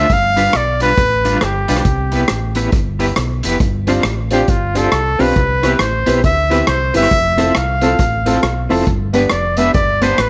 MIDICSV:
0, 0, Header, 1, 7, 480
1, 0, Start_track
1, 0, Key_signature, 0, "major"
1, 0, Tempo, 438917
1, 105, Time_signature, 4, 2, 24, 8
1, 11260, End_track
2, 0, Start_track
2, 0, Title_t, "Trumpet"
2, 0, Program_c, 0, 56
2, 0, Note_on_c, 0, 76, 102
2, 142, Note_on_c, 0, 77, 125
2, 159, Note_off_c, 0, 76, 0
2, 620, Note_on_c, 0, 74, 104
2, 636, Note_off_c, 0, 77, 0
2, 899, Note_off_c, 0, 74, 0
2, 905, Note_on_c, 0, 71, 109
2, 1572, Note_on_c, 0, 67, 87
2, 1588, Note_off_c, 0, 71, 0
2, 2815, Note_off_c, 0, 67, 0
2, 4730, Note_on_c, 0, 67, 83
2, 4918, Note_on_c, 0, 65, 88
2, 4935, Note_off_c, 0, 67, 0
2, 5222, Note_on_c, 0, 69, 110
2, 5239, Note_off_c, 0, 65, 0
2, 5696, Note_on_c, 0, 71, 99
2, 5712, Note_off_c, 0, 69, 0
2, 6354, Note_on_c, 0, 72, 86
2, 6370, Note_off_c, 0, 71, 0
2, 6829, Note_off_c, 0, 72, 0
2, 6837, Note_on_c, 0, 76, 102
2, 7277, Note_off_c, 0, 76, 0
2, 7312, Note_on_c, 0, 72, 93
2, 7583, Note_off_c, 0, 72, 0
2, 7616, Note_on_c, 0, 76, 120
2, 8228, Note_off_c, 0, 76, 0
2, 8279, Note_on_c, 0, 77, 95
2, 9482, Note_off_c, 0, 77, 0
2, 10181, Note_on_c, 0, 74, 93
2, 10477, Note_on_c, 0, 76, 106
2, 10493, Note_off_c, 0, 74, 0
2, 10648, Note_off_c, 0, 76, 0
2, 10655, Note_on_c, 0, 74, 103
2, 10961, Note_on_c, 0, 72, 109
2, 10978, Note_off_c, 0, 74, 0
2, 11161, Note_on_c, 0, 71, 94
2, 11178, Note_off_c, 0, 72, 0
2, 11260, Note_off_c, 0, 71, 0
2, 11260, End_track
3, 0, Start_track
3, 0, Title_t, "Clean electric guitar"
3, 0, Program_c, 1, 27
3, 398, Note_on_c, 1, 55, 89
3, 404, Note_on_c, 1, 62, 92
3, 408, Note_on_c, 1, 65, 100
3, 412, Note_on_c, 1, 71, 97
3, 545, Note_off_c, 1, 55, 0
3, 547, Note_off_c, 1, 62, 0
3, 550, Note_off_c, 1, 65, 0
3, 551, Note_off_c, 1, 71, 0
3, 880, Note_on_c, 1, 55, 71
3, 883, Note_on_c, 1, 62, 82
3, 889, Note_on_c, 1, 65, 91
3, 890, Note_on_c, 1, 71, 89
3, 1026, Note_off_c, 1, 55, 0
3, 1027, Note_off_c, 1, 62, 0
3, 1030, Note_off_c, 1, 65, 0
3, 1031, Note_off_c, 1, 71, 0
3, 1360, Note_on_c, 1, 55, 82
3, 1367, Note_on_c, 1, 62, 94
3, 1371, Note_on_c, 1, 65, 97
3, 1376, Note_on_c, 1, 71, 97
3, 1506, Note_off_c, 1, 55, 0
3, 1510, Note_off_c, 1, 62, 0
3, 1512, Note_off_c, 1, 65, 0
3, 1514, Note_off_c, 1, 71, 0
3, 1838, Note_on_c, 1, 55, 84
3, 1845, Note_on_c, 1, 62, 90
3, 1848, Note_on_c, 1, 65, 81
3, 1850, Note_on_c, 1, 71, 87
3, 1985, Note_off_c, 1, 55, 0
3, 1989, Note_off_c, 1, 62, 0
3, 1990, Note_off_c, 1, 65, 0
3, 1991, Note_off_c, 1, 71, 0
3, 2316, Note_on_c, 1, 59, 81
3, 2324, Note_on_c, 1, 64, 83
3, 2328, Note_on_c, 1, 67, 86
3, 2333, Note_on_c, 1, 71, 86
3, 2464, Note_off_c, 1, 59, 0
3, 2468, Note_off_c, 1, 64, 0
3, 2470, Note_off_c, 1, 67, 0
3, 2473, Note_off_c, 1, 71, 0
3, 2796, Note_on_c, 1, 59, 76
3, 2802, Note_on_c, 1, 64, 78
3, 2805, Note_on_c, 1, 67, 76
3, 2809, Note_on_c, 1, 71, 84
3, 2944, Note_off_c, 1, 59, 0
3, 2947, Note_off_c, 1, 64, 0
3, 2949, Note_off_c, 1, 67, 0
3, 2951, Note_off_c, 1, 71, 0
3, 3272, Note_on_c, 1, 59, 76
3, 3275, Note_on_c, 1, 64, 82
3, 3282, Note_on_c, 1, 67, 93
3, 3285, Note_on_c, 1, 71, 89
3, 3422, Note_off_c, 1, 59, 0
3, 3424, Note_off_c, 1, 64, 0
3, 3427, Note_off_c, 1, 67, 0
3, 3429, Note_off_c, 1, 71, 0
3, 3761, Note_on_c, 1, 59, 71
3, 3765, Note_on_c, 1, 64, 76
3, 3771, Note_on_c, 1, 67, 75
3, 3775, Note_on_c, 1, 71, 89
3, 3906, Note_off_c, 1, 59, 0
3, 3909, Note_off_c, 1, 64, 0
3, 3911, Note_off_c, 1, 67, 0
3, 3913, Note_off_c, 1, 71, 0
3, 4242, Note_on_c, 1, 60, 86
3, 4245, Note_on_c, 1, 65, 104
3, 4249, Note_on_c, 1, 67, 87
3, 4253, Note_on_c, 1, 72, 108
3, 4387, Note_off_c, 1, 60, 0
3, 4388, Note_off_c, 1, 65, 0
3, 4390, Note_off_c, 1, 67, 0
3, 4393, Note_off_c, 1, 72, 0
3, 4725, Note_on_c, 1, 60, 79
3, 4731, Note_on_c, 1, 65, 88
3, 4734, Note_on_c, 1, 67, 77
3, 4737, Note_on_c, 1, 72, 90
3, 4868, Note_off_c, 1, 60, 0
3, 4871, Note_off_c, 1, 65, 0
3, 4873, Note_off_c, 1, 67, 0
3, 4875, Note_off_c, 1, 72, 0
3, 5199, Note_on_c, 1, 60, 84
3, 5204, Note_on_c, 1, 65, 88
3, 5208, Note_on_c, 1, 67, 97
3, 5212, Note_on_c, 1, 72, 101
3, 5345, Note_off_c, 1, 60, 0
3, 5348, Note_off_c, 1, 65, 0
3, 5350, Note_off_c, 1, 67, 0
3, 5352, Note_off_c, 1, 72, 0
3, 5677, Note_on_c, 1, 60, 96
3, 5681, Note_on_c, 1, 65, 91
3, 5683, Note_on_c, 1, 67, 104
3, 5688, Note_on_c, 1, 72, 92
3, 5824, Note_off_c, 1, 60, 0
3, 5826, Note_off_c, 1, 65, 0
3, 5827, Note_off_c, 1, 67, 0
3, 5830, Note_off_c, 1, 72, 0
3, 6160, Note_on_c, 1, 59, 83
3, 6167, Note_on_c, 1, 64, 81
3, 6169, Note_on_c, 1, 67, 90
3, 6172, Note_on_c, 1, 71, 99
3, 6305, Note_off_c, 1, 59, 0
3, 6309, Note_off_c, 1, 64, 0
3, 6310, Note_off_c, 1, 67, 0
3, 6311, Note_off_c, 1, 71, 0
3, 6628, Note_on_c, 1, 59, 74
3, 6635, Note_on_c, 1, 64, 70
3, 6638, Note_on_c, 1, 67, 72
3, 6643, Note_on_c, 1, 71, 73
3, 6779, Note_off_c, 1, 59, 0
3, 6782, Note_off_c, 1, 64, 0
3, 6784, Note_off_c, 1, 67, 0
3, 6787, Note_off_c, 1, 71, 0
3, 7110, Note_on_c, 1, 59, 83
3, 7117, Note_on_c, 1, 64, 85
3, 7120, Note_on_c, 1, 67, 87
3, 7125, Note_on_c, 1, 71, 94
3, 7260, Note_off_c, 1, 59, 0
3, 7263, Note_off_c, 1, 64, 0
3, 7265, Note_off_c, 1, 67, 0
3, 7267, Note_off_c, 1, 71, 0
3, 7588, Note_on_c, 1, 59, 92
3, 7594, Note_on_c, 1, 64, 92
3, 7598, Note_on_c, 1, 67, 97
3, 7601, Note_on_c, 1, 71, 90
3, 7739, Note_off_c, 1, 59, 0
3, 7741, Note_off_c, 1, 64, 0
3, 7743, Note_off_c, 1, 67, 0
3, 7745, Note_off_c, 1, 71, 0
3, 8066, Note_on_c, 1, 60, 95
3, 8069, Note_on_c, 1, 64, 83
3, 8075, Note_on_c, 1, 69, 101
3, 8081, Note_on_c, 1, 72, 93
3, 8217, Note_off_c, 1, 60, 0
3, 8219, Note_off_c, 1, 64, 0
3, 8222, Note_off_c, 1, 69, 0
3, 8225, Note_off_c, 1, 72, 0
3, 8560, Note_on_c, 1, 60, 78
3, 8563, Note_on_c, 1, 64, 78
3, 8569, Note_on_c, 1, 69, 85
3, 8571, Note_on_c, 1, 72, 84
3, 8704, Note_off_c, 1, 60, 0
3, 8706, Note_off_c, 1, 64, 0
3, 8709, Note_off_c, 1, 69, 0
3, 8710, Note_off_c, 1, 72, 0
3, 9036, Note_on_c, 1, 60, 87
3, 9041, Note_on_c, 1, 64, 92
3, 9045, Note_on_c, 1, 69, 96
3, 9049, Note_on_c, 1, 72, 92
3, 9182, Note_off_c, 1, 60, 0
3, 9184, Note_off_c, 1, 64, 0
3, 9186, Note_off_c, 1, 69, 0
3, 9188, Note_off_c, 1, 72, 0
3, 9515, Note_on_c, 1, 60, 81
3, 9521, Note_on_c, 1, 64, 85
3, 9526, Note_on_c, 1, 69, 92
3, 9529, Note_on_c, 1, 72, 86
3, 9661, Note_off_c, 1, 60, 0
3, 9664, Note_off_c, 1, 64, 0
3, 9667, Note_off_c, 1, 69, 0
3, 9668, Note_off_c, 1, 72, 0
3, 9991, Note_on_c, 1, 59, 72
3, 9994, Note_on_c, 1, 62, 85
3, 10001, Note_on_c, 1, 67, 77
3, 10006, Note_on_c, 1, 71, 98
3, 10139, Note_off_c, 1, 59, 0
3, 10141, Note_off_c, 1, 62, 0
3, 10144, Note_off_c, 1, 67, 0
3, 10146, Note_off_c, 1, 71, 0
3, 10475, Note_on_c, 1, 59, 64
3, 10477, Note_on_c, 1, 62, 78
3, 10482, Note_on_c, 1, 67, 77
3, 10485, Note_on_c, 1, 71, 90
3, 10620, Note_off_c, 1, 59, 0
3, 10622, Note_off_c, 1, 62, 0
3, 10624, Note_off_c, 1, 67, 0
3, 10625, Note_off_c, 1, 71, 0
3, 10957, Note_on_c, 1, 59, 90
3, 10961, Note_on_c, 1, 62, 91
3, 10967, Note_on_c, 1, 67, 89
3, 10968, Note_on_c, 1, 71, 102
3, 11101, Note_off_c, 1, 59, 0
3, 11104, Note_off_c, 1, 62, 0
3, 11107, Note_off_c, 1, 67, 0
3, 11107, Note_off_c, 1, 71, 0
3, 11260, End_track
4, 0, Start_track
4, 0, Title_t, "Upright piano"
4, 0, Program_c, 2, 0
4, 4231, Note_on_c, 2, 60, 85
4, 4235, Note_on_c, 2, 62, 84
4, 4241, Note_on_c, 2, 65, 81
4, 4243, Note_on_c, 2, 67, 97
4, 4351, Note_off_c, 2, 60, 0
4, 4353, Note_off_c, 2, 62, 0
4, 4355, Note_off_c, 2, 65, 0
4, 4357, Note_off_c, 2, 67, 0
4, 4709, Note_on_c, 2, 60, 90
4, 4712, Note_on_c, 2, 62, 87
4, 4716, Note_on_c, 2, 65, 77
4, 4721, Note_on_c, 2, 67, 99
4, 4829, Note_off_c, 2, 60, 0
4, 4831, Note_off_c, 2, 62, 0
4, 4833, Note_off_c, 2, 65, 0
4, 4835, Note_off_c, 2, 67, 0
4, 5192, Note_on_c, 2, 60, 91
4, 5196, Note_on_c, 2, 62, 80
4, 5199, Note_on_c, 2, 65, 85
4, 5205, Note_on_c, 2, 67, 98
4, 5311, Note_off_c, 2, 60, 0
4, 5313, Note_off_c, 2, 62, 0
4, 5314, Note_off_c, 2, 65, 0
4, 5317, Note_off_c, 2, 67, 0
4, 5671, Note_on_c, 2, 60, 94
4, 5673, Note_on_c, 2, 62, 79
4, 5678, Note_on_c, 2, 65, 86
4, 5682, Note_on_c, 2, 67, 94
4, 5790, Note_off_c, 2, 60, 0
4, 5791, Note_off_c, 2, 62, 0
4, 5794, Note_off_c, 2, 65, 0
4, 5796, Note_off_c, 2, 67, 0
4, 6153, Note_on_c, 2, 60, 88
4, 6155, Note_on_c, 2, 64, 85
4, 6162, Note_on_c, 2, 67, 84
4, 6166, Note_on_c, 2, 71, 109
4, 6271, Note_off_c, 2, 60, 0
4, 6272, Note_off_c, 2, 64, 0
4, 6275, Note_off_c, 2, 67, 0
4, 6277, Note_off_c, 2, 71, 0
4, 6632, Note_on_c, 2, 60, 97
4, 6636, Note_on_c, 2, 64, 87
4, 6640, Note_on_c, 2, 67, 83
4, 6642, Note_on_c, 2, 71, 107
4, 6750, Note_off_c, 2, 60, 0
4, 6752, Note_off_c, 2, 64, 0
4, 6754, Note_off_c, 2, 67, 0
4, 6755, Note_off_c, 2, 71, 0
4, 7108, Note_on_c, 2, 60, 95
4, 7112, Note_on_c, 2, 64, 88
4, 7116, Note_on_c, 2, 67, 84
4, 7121, Note_on_c, 2, 71, 95
4, 7228, Note_off_c, 2, 60, 0
4, 7230, Note_off_c, 2, 64, 0
4, 7232, Note_off_c, 2, 67, 0
4, 7234, Note_off_c, 2, 71, 0
4, 7298, Note_on_c, 2, 71, 27
4, 7299, Note_on_c, 2, 67, 27
4, 7360, Note_off_c, 2, 71, 0
4, 7361, Note_off_c, 2, 67, 0
4, 7586, Note_on_c, 2, 60, 84
4, 7590, Note_on_c, 2, 64, 80
4, 7594, Note_on_c, 2, 67, 78
4, 7600, Note_on_c, 2, 71, 95
4, 7707, Note_off_c, 2, 60, 0
4, 7708, Note_off_c, 2, 64, 0
4, 7711, Note_off_c, 2, 67, 0
4, 7713, Note_off_c, 2, 71, 0
4, 8064, Note_on_c, 2, 60, 89
4, 8068, Note_on_c, 2, 64, 82
4, 8074, Note_on_c, 2, 65, 78
4, 8078, Note_on_c, 2, 69, 96
4, 8185, Note_off_c, 2, 60, 0
4, 8187, Note_off_c, 2, 64, 0
4, 8190, Note_off_c, 2, 65, 0
4, 8192, Note_off_c, 2, 69, 0
4, 8546, Note_on_c, 2, 60, 100
4, 8551, Note_on_c, 2, 64, 85
4, 8552, Note_on_c, 2, 65, 93
4, 8558, Note_on_c, 2, 69, 103
4, 8666, Note_off_c, 2, 60, 0
4, 8668, Note_off_c, 2, 64, 0
4, 8669, Note_off_c, 2, 65, 0
4, 8672, Note_off_c, 2, 69, 0
4, 9030, Note_on_c, 2, 60, 89
4, 9034, Note_on_c, 2, 64, 83
4, 9038, Note_on_c, 2, 65, 88
4, 9040, Note_on_c, 2, 69, 102
4, 9148, Note_off_c, 2, 60, 0
4, 9150, Note_off_c, 2, 64, 0
4, 9152, Note_off_c, 2, 65, 0
4, 9153, Note_off_c, 2, 69, 0
4, 9505, Note_on_c, 2, 60, 84
4, 9509, Note_on_c, 2, 64, 90
4, 9514, Note_on_c, 2, 65, 81
4, 9519, Note_on_c, 2, 69, 99
4, 9625, Note_off_c, 2, 60, 0
4, 9627, Note_off_c, 2, 64, 0
4, 9629, Note_off_c, 2, 65, 0
4, 9632, Note_off_c, 2, 69, 0
4, 9986, Note_on_c, 2, 59, 87
4, 9993, Note_on_c, 2, 62, 91
4, 9996, Note_on_c, 2, 67, 81
4, 10001, Note_on_c, 2, 71, 107
4, 10105, Note_off_c, 2, 59, 0
4, 10108, Note_off_c, 2, 62, 0
4, 10110, Note_off_c, 2, 67, 0
4, 10113, Note_off_c, 2, 71, 0
4, 10469, Note_on_c, 2, 59, 88
4, 10475, Note_on_c, 2, 62, 88
4, 10480, Note_on_c, 2, 67, 83
4, 10485, Note_on_c, 2, 71, 99
4, 10587, Note_off_c, 2, 59, 0
4, 10589, Note_off_c, 2, 62, 0
4, 10592, Note_off_c, 2, 67, 0
4, 10595, Note_off_c, 2, 71, 0
4, 10950, Note_on_c, 2, 59, 90
4, 10955, Note_on_c, 2, 62, 81
4, 10956, Note_on_c, 2, 67, 86
4, 10962, Note_on_c, 2, 71, 95
4, 11067, Note_off_c, 2, 59, 0
4, 11069, Note_off_c, 2, 62, 0
4, 11070, Note_off_c, 2, 67, 0
4, 11073, Note_off_c, 2, 71, 0
4, 11141, Note_on_c, 2, 67, 25
4, 11141, Note_on_c, 2, 71, 28
4, 11200, Note_off_c, 2, 67, 0
4, 11200, Note_off_c, 2, 71, 0
4, 11260, End_track
5, 0, Start_track
5, 0, Title_t, "Fingered electric bass"
5, 0, Program_c, 3, 33
5, 112, Note_on_c, 3, 31, 98
5, 517, Note_off_c, 3, 31, 0
5, 602, Note_on_c, 3, 35, 87
5, 1003, Note_off_c, 3, 35, 0
5, 1071, Note_on_c, 3, 33, 96
5, 1477, Note_off_c, 3, 33, 0
5, 1554, Note_on_c, 3, 31, 82
5, 1802, Note_off_c, 3, 31, 0
5, 1855, Note_on_c, 3, 35, 88
5, 2006, Note_off_c, 3, 35, 0
5, 2028, Note_on_c, 3, 36, 103
5, 2435, Note_off_c, 3, 36, 0
5, 2517, Note_on_c, 3, 33, 82
5, 2920, Note_off_c, 3, 33, 0
5, 2984, Note_on_c, 3, 31, 98
5, 3393, Note_off_c, 3, 31, 0
5, 3472, Note_on_c, 3, 35, 86
5, 3721, Note_off_c, 3, 35, 0
5, 3768, Note_on_c, 3, 29, 84
5, 3922, Note_off_c, 3, 29, 0
5, 3943, Note_on_c, 3, 31, 102
5, 4353, Note_off_c, 3, 31, 0
5, 4423, Note_on_c, 3, 33, 84
5, 4832, Note_off_c, 3, 33, 0
5, 4907, Note_on_c, 3, 31, 93
5, 5314, Note_off_c, 3, 31, 0
5, 5385, Note_on_c, 3, 36, 86
5, 5637, Note_off_c, 3, 36, 0
5, 5679, Note_on_c, 3, 35, 78
5, 5836, Note_off_c, 3, 35, 0
5, 5865, Note_on_c, 3, 36, 101
5, 6273, Note_off_c, 3, 36, 0
5, 6344, Note_on_c, 3, 33, 95
5, 6596, Note_off_c, 3, 33, 0
5, 6643, Note_on_c, 3, 35, 107
5, 6798, Note_off_c, 3, 35, 0
5, 6829, Note_on_c, 3, 38, 97
5, 7235, Note_off_c, 3, 38, 0
5, 7305, Note_on_c, 3, 36, 85
5, 7556, Note_off_c, 3, 36, 0
5, 7603, Note_on_c, 3, 31, 81
5, 7758, Note_off_c, 3, 31, 0
5, 7782, Note_on_c, 3, 29, 106
5, 8190, Note_off_c, 3, 29, 0
5, 8274, Note_on_c, 3, 36, 102
5, 8677, Note_off_c, 3, 36, 0
5, 8745, Note_on_c, 3, 33, 102
5, 9152, Note_off_c, 3, 33, 0
5, 9223, Note_on_c, 3, 35, 84
5, 9474, Note_off_c, 3, 35, 0
5, 9519, Note_on_c, 3, 29, 88
5, 9675, Note_off_c, 3, 29, 0
5, 9703, Note_on_c, 3, 31, 103
5, 10110, Note_off_c, 3, 31, 0
5, 10186, Note_on_c, 3, 29, 92
5, 10591, Note_off_c, 3, 29, 0
5, 10658, Note_on_c, 3, 31, 87
5, 11067, Note_off_c, 3, 31, 0
5, 11146, Note_on_c, 3, 33, 88
5, 11260, Note_off_c, 3, 33, 0
5, 11260, End_track
6, 0, Start_track
6, 0, Title_t, "Muted clean electric guitar strokes"
6, 1069, Note_on_c, 9, 29, 49
6, 1178, Note_off_c, 9, 29, 0
6, 3461, Note_on_c, 9, 29, 36
6, 3571, Note_off_c, 9, 29, 0
6, 4904, Note_on_c, 9, 29, 41
6, 5013, Note_off_c, 9, 29, 0
6, 8745, Note_on_c, 9, 29, 43
6, 8855, Note_off_c, 9, 29, 0
6, 11260, End_track
7, 0, Start_track
7, 0, Title_t, "Drums"
7, 106, Note_on_c, 9, 36, 96
7, 108, Note_on_c, 9, 42, 75
7, 216, Note_off_c, 9, 36, 0
7, 218, Note_off_c, 9, 42, 0
7, 403, Note_on_c, 9, 42, 75
7, 512, Note_off_c, 9, 42, 0
7, 581, Note_on_c, 9, 37, 119
7, 594, Note_on_c, 9, 42, 71
7, 691, Note_off_c, 9, 37, 0
7, 704, Note_off_c, 9, 42, 0
7, 877, Note_on_c, 9, 42, 82
7, 987, Note_off_c, 9, 42, 0
7, 1067, Note_on_c, 9, 36, 115
7, 1068, Note_on_c, 9, 42, 72
7, 1176, Note_off_c, 9, 36, 0
7, 1177, Note_off_c, 9, 42, 0
7, 1366, Note_on_c, 9, 42, 81
7, 1475, Note_off_c, 9, 42, 0
7, 1543, Note_on_c, 9, 37, 105
7, 1546, Note_on_c, 9, 42, 59
7, 1652, Note_off_c, 9, 37, 0
7, 1655, Note_off_c, 9, 42, 0
7, 1841, Note_on_c, 9, 42, 95
7, 1929, Note_on_c, 9, 37, 73
7, 1950, Note_off_c, 9, 42, 0
7, 2023, Note_on_c, 9, 42, 66
7, 2024, Note_on_c, 9, 36, 111
7, 2039, Note_off_c, 9, 37, 0
7, 2132, Note_off_c, 9, 42, 0
7, 2133, Note_off_c, 9, 36, 0
7, 2315, Note_on_c, 9, 42, 75
7, 2425, Note_off_c, 9, 42, 0
7, 2493, Note_on_c, 9, 37, 121
7, 2506, Note_on_c, 9, 42, 81
7, 2602, Note_off_c, 9, 37, 0
7, 2615, Note_off_c, 9, 42, 0
7, 2788, Note_on_c, 9, 42, 74
7, 2898, Note_off_c, 9, 42, 0
7, 2977, Note_on_c, 9, 42, 75
7, 2980, Note_on_c, 9, 36, 111
7, 3086, Note_off_c, 9, 42, 0
7, 3090, Note_off_c, 9, 36, 0
7, 3278, Note_on_c, 9, 42, 78
7, 3388, Note_off_c, 9, 42, 0
7, 3457, Note_on_c, 9, 37, 100
7, 3460, Note_on_c, 9, 42, 63
7, 3566, Note_off_c, 9, 37, 0
7, 3569, Note_off_c, 9, 42, 0
7, 3753, Note_on_c, 9, 42, 89
7, 3863, Note_off_c, 9, 42, 0
7, 3938, Note_on_c, 9, 42, 67
7, 3939, Note_on_c, 9, 36, 112
7, 4047, Note_off_c, 9, 42, 0
7, 4049, Note_off_c, 9, 36, 0
7, 4234, Note_on_c, 9, 42, 85
7, 4344, Note_off_c, 9, 42, 0
7, 4411, Note_on_c, 9, 37, 112
7, 4424, Note_on_c, 9, 42, 79
7, 4520, Note_off_c, 9, 37, 0
7, 4533, Note_off_c, 9, 42, 0
7, 4709, Note_on_c, 9, 42, 75
7, 4818, Note_off_c, 9, 42, 0
7, 4898, Note_on_c, 9, 42, 66
7, 4902, Note_on_c, 9, 36, 114
7, 5007, Note_off_c, 9, 42, 0
7, 5011, Note_off_c, 9, 36, 0
7, 5198, Note_on_c, 9, 42, 88
7, 5307, Note_off_c, 9, 42, 0
7, 5378, Note_on_c, 9, 37, 101
7, 5381, Note_on_c, 9, 42, 66
7, 5487, Note_off_c, 9, 37, 0
7, 5490, Note_off_c, 9, 42, 0
7, 5681, Note_on_c, 9, 46, 59
7, 5791, Note_off_c, 9, 46, 0
7, 5862, Note_on_c, 9, 36, 106
7, 5865, Note_on_c, 9, 42, 73
7, 5972, Note_off_c, 9, 36, 0
7, 5974, Note_off_c, 9, 42, 0
7, 6160, Note_on_c, 9, 42, 77
7, 6161, Note_on_c, 9, 37, 69
7, 6269, Note_off_c, 9, 42, 0
7, 6270, Note_off_c, 9, 37, 0
7, 6334, Note_on_c, 9, 37, 118
7, 6347, Note_on_c, 9, 42, 85
7, 6443, Note_off_c, 9, 37, 0
7, 6456, Note_off_c, 9, 42, 0
7, 6631, Note_on_c, 9, 42, 90
7, 6740, Note_off_c, 9, 42, 0
7, 6823, Note_on_c, 9, 36, 109
7, 6823, Note_on_c, 9, 42, 73
7, 6932, Note_off_c, 9, 36, 0
7, 6933, Note_off_c, 9, 42, 0
7, 7122, Note_on_c, 9, 42, 77
7, 7231, Note_off_c, 9, 42, 0
7, 7295, Note_on_c, 9, 37, 106
7, 7298, Note_on_c, 9, 42, 58
7, 7405, Note_off_c, 9, 37, 0
7, 7408, Note_off_c, 9, 42, 0
7, 7592, Note_on_c, 9, 42, 87
7, 7683, Note_on_c, 9, 37, 67
7, 7701, Note_off_c, 9, 42, 0
7, 7773, Note_on_c, 9, 42, 73
7, 7778, Note_on_c, 9, 36, 101
7, 7793, Note_off_c, 9, 37, 0
7, 7882, Note_off_c, 9, 42, 0
7, 7887, Note_off_c, 9, 36, 0
7, 8072, Note_on_c, 9, 42, 84
7, 8181, Note_off_c, 9, 42, 0
7, 8253, Note_on_c, 9, 37, 114
7, 8266, Note_on_c, 9, 42, 88
7, 8363, Note_off_c, 9, 37, 0
7, 8376, Note_off_c, 9, 42, 0
7, 8546, Note_on_c, 9, 42, 80
7, 8655, Note_off_c, 9, 42, 0
7, 8735, Note_on_c, 9, 42, 79
7, 8739, Note_on_c, 9, 36, 117
7, 8844, Note_off_c, 9, 42, 0
7, 8849, Note_off_c, 9, 36, 0
7, 9036, Note_on_c, 9, 42, 86
7, 9145, Note_off_c, 9, 42, 0
7, 9219, Note_on_c, 9, 37, 100
7, 9222, Note_on_c, 9, 42, 63
7, 9328, Note_off_c, 9, 37, 0
7, 9331, Note_off_c, 9, 42, 0
7, 9516, Note_on_c, 9, 46, 60
7, 9626, Note_off_c, 9, 46, 0
7, 9699, Note_on_c, 9, 36, 101
7, 9700, Note_on_c, 9, 42, 70
7, 9809, Note_off_c, 9, 36, 0
7, 9810, Note_off_c, 9, 42, 0
7, 9991, Note_on_c, 9, 42, 79
7, 10101, Note_off_c, 9, 42, 0
7, 10165, Note_on_c, 9, 37, 112
7, 10178, Note_on_c, 9, 42, 85
7, 10274, Note_off_c, 9, 37, 0
7, 10288, Note_off_c, 9, 42, 0
7, 10463, Note_on_c, 9, 42, 84
7, 10572, Note_off_c, 9, 42, 0
7, 10653, Note_on_c, 9, 42, 69
7, 10658, Note_on_c, 9, 36, 110
7, 10762, Note_off_c, 9, 42, 0
7, 10767, Note_off_c, 9, 36, 0
7, 10954, Note_on_c, 9, 42, 92
7, 11064, Note_off_c, 9, 42, 0
7, 11134, Note_on_c, 9, 37, 100
7, 11137, Note_on_c, 9, 42, 68
7, 11243, Note_off_c, 9, 37, 0
7, 11246, Note_off_c, 9, 42, 0
7, 11260, End_track
0, 0, End_of_file